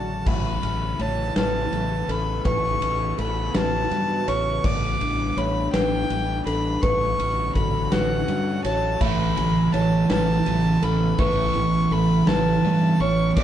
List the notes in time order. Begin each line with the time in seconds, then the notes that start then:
Already playing: A1 C#3 D3 F#3 A3 C#4 F#4 A4 D5 A5
0.26 A1 C#3 E3 A3 B3 E4 E5 B5, kick, crash
0.63 A1 C#4, ride
0.99 A1 A3 C#5 A5, ride
1.36 A1 C#4 B4 A5, snare, ride
1.72 A1 B4, ride
2.08 A1 C#4 A4 B5, ride
2.45 A1 A3 F#4 B4 C#6, kick, ride
2.81 A1 C#4, ride
3.18 A1 A3 A4 B5, ride
3.54 A1 C#4 B4 A5, snare, ride
3.91 G2 B4, ride
4.27 A1 C#4 C#5 C#6, ride
4.64 A1 G3 A3 D4 D5 D6, kick, crash
5.01 A1 D4, ride
5.37 A1 A3 C#5 B5, ride
5.73 A1 D4 B4 G5, snare, ride
6.10 A1 B4, ride
6.46 A1 D4 A4 B5, ride
6.82 A1 D3 F#3 A3 C#4 F#4 B4 C#6, kick, ride
7.19 A1 C#4, ride
7.55 A1 A4 B5, kick, ride
7.92 A1 F#4 B4 F#5, snare, ride
8.28 G2, ride
8.64 A1 F#4 C#5 A5, ride
9.01 A1 A2 C#3 E3 A3 B3 E4 E5 B5, kick, crash
9.37 A1 A2 E3 C#4, ride
9.73 A1 A2 E3 A3 C#5 A5, ride
10.10 A1 A2 E3 C#4 B4 A5, snare, ride
10.46 A1 A2 E3 B4, ride
10.82 A1 A2 E3 C#4 A4 B5, ride
11.18 A1 A2 E3 A3 B4 C#6, kick
11.55 A1 A2 E3 C#4
11.91 A1 A2 E3 A3 A4 B5
12.27 A1 A2 E3 C#4 B4 A5, snare
12.64 G2 A2 E3 B4
13.00 A1 A2 E3 C#4 C#5 C#6
13.35 A1 G2 D3 G3 A3 D4 D5 D6, kick, crash